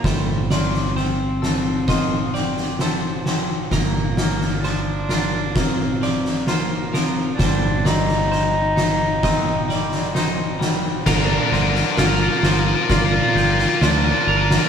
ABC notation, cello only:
X:1
M:4/4
L:1/8
Q:1/4=65
K:Gm
V:1 name="Cello"
A, C6 z | B,2 D2 C2 B, C | D E6 z | D2 F2 F2 D2 |]